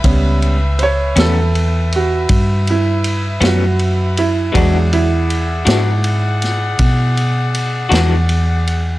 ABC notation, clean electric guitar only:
X:1
M:12/8
L:1/8
Q:3/8=53
K:A
V:1 name="Clean electric guitar"
z3 [A,,=G,B,C] z4 z [A,,G,B,C] z2 | [E,G,DF] z2 [E,G,DF] z4 z [E,G,DF] z2 |]